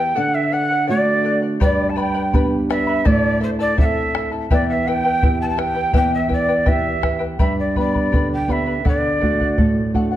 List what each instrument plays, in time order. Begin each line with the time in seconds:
Already playing: nylon-string guitar E2 B3 E4 G4, charango E4 B4 G5, quena G5
0.15 nylon-string guitar D3, charango A4 D5 F#5, quena F#5
0.34 quena E5
0.52 charango A4 D5 F#5, quena F#5
0.71 charango D5 F#5
0.87 nylon-string guitar A3 D4 F#4, charango A4 D5 F#5, quena D5
1.24 charango A4 D5 F#5
1.42 charango D5 F#5
1.60 nylon-string guitar G2, charango G4 B4 D5 G5 B5, quena D5, bombo low
1.89 quena A5
1.96 charango B4 D5 G5 B5, quena G5 A5
2.01 quena G5
2.14 charango B4 D5 B5
2.33 nylon-string guitar B3 D4 G4, charango G4 B4 D5 G5 B5, bombo low
2.70 charango B4 D5 G5 B5, quena E5, bombo rim
2.87 charango B4 D5 B5
3.05 nylon-string guitar A2, charango E4 A4 C5 E5 A5, quena D5, bombo low
3.40 charango E4 A4 E5 A5, quena C5
3.59 charango E4 A4 A5, quena D5
3.77 nylon-string guitar C4 E4 A4, charango E4 A4 C5 E5 A5, quena E5, bombo low
3.81 quena F#5
3.86 quena E5
4.15 charango E4 A4 E5 A5, bombo rim
4.32 charango E4 A4 A5
4.50 nylon-string guitar E2, charango E4 G4 B4 E5 G5, quena D5, bombo low
4.69 quena E5 F#5
4.73 quena E5
4.87 charango E4 B4 E5 G5, quena G5
5.04 charango E4 B4 G5
5.22 nylon-string guitar B3 E4 G4, charango E4 G4 B4 E5 G5, bombo low
5.42 quena A5
5.49 quena A5
5.56 charango E4 B4 E5 G5, quena G5, bombo rim
5.75 charango E4 B4 G5
5.93 nylon-string guitar E2, charango E4 G4 B4 E5 G5, quena G5, bombo low
6.14 quena E5
6.28 charango E4 B4 E5 G5, quena D5, bombo low
6.33 quena D5
6.48 charango E4 B4 G5
6.65 nylon-string guitar B3 E4 G4, charango E4 G4 B4 E5 G5, quena E5, bombo low
7.01 charango E4 B4 E5 G5, bombo rim, bombo low
7.19 charango E4 B4 G5
7.39 nylon-string guitar G2, charango G4 B4 D5 G5 B5, quena E5, bombo low
7.60 quena D5
7.76 nylon-string guitar B3 D4 G4, charango B4 D5 G5 B5, quena D5, bombo low
7.94 charango B4 D5 B5, bombo low
8.12 nylon-string guitar D3, charango G4 B4 D5 G5 B5, bombo low
8.33 quena G5
8.48 nylon-string guitar B3 D4 G4, charango B4 D5 G5 B5, quena E5, bombo low
8.66 charango B4 D5 B5
8.85 nylon-string guitar D3, charango A4 D5 F#5, quena D5, bombo low
9.21 nylon-string guitar A3 D4 F#4, charango A4 D5 F#5, bombo low
9.40 charango D5 F#5, bombo low
9.58 nylon-string guitar A2, charango A4 D5 F#5, bombo low
9.94 nylon-string guitar A3 D4 F#4, charango A4 D5 F#5, bombo low
10.12 charango D5 F#5